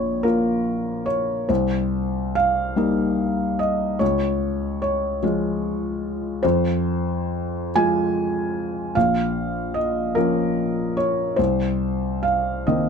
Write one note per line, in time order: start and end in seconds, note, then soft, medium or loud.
0.00 0.22 A#1 soft
0.00 1.06 C#5 medium
0.23 1.45 A#3 soft
0.23 1.45 F4 soft
0.23 1.06 A#4 medium
1.06 1.49 C#5 medium
1.49 2.74 C2 soft
1.49 2.36 C5 medium
2.35 3.59 F5 medium
2.76 3.96 G3 soft
2.76 3.96 A#3 soft
2.76 3.97 D#4 soft
3.59 4.00 D#5 medium
3.99 5.19 C#2 soft
3.99 4.80 C#5 medium
4.82 5.23 C#5 medium
5.23 6.39 F3 soft
5.23 6.40 G#3 soft
5.23 6.40 F4 soft
6.43 7.70 F2 soft
6.43 7.73 C5 medium
7.75 8.93 F3 soft
7.75 8.93 G#3 soft
7.75 8.94 F4 soft
7.75 8.97 G#5 medium
8.95 10.12 A#1 soft
8.95 9.75 F5 medium
9.74 10.15 D#5 medium
10.15 11.34 F3 soft
10.15 11.35 A#3 soft
10.15 11.35 C#4 soft
10.15 10.96 A#4 medium
10.97 11.38 C#5 medium
11.36 12.63 C2 soft
11.36 12.22 C5 medium
12.23 12.66 F5 medium
12.67 12.89 D#3 soft
12.67 12.89 A#3 soft
12.67 12.89 C4 soft
12.67 12.89 D#5 soft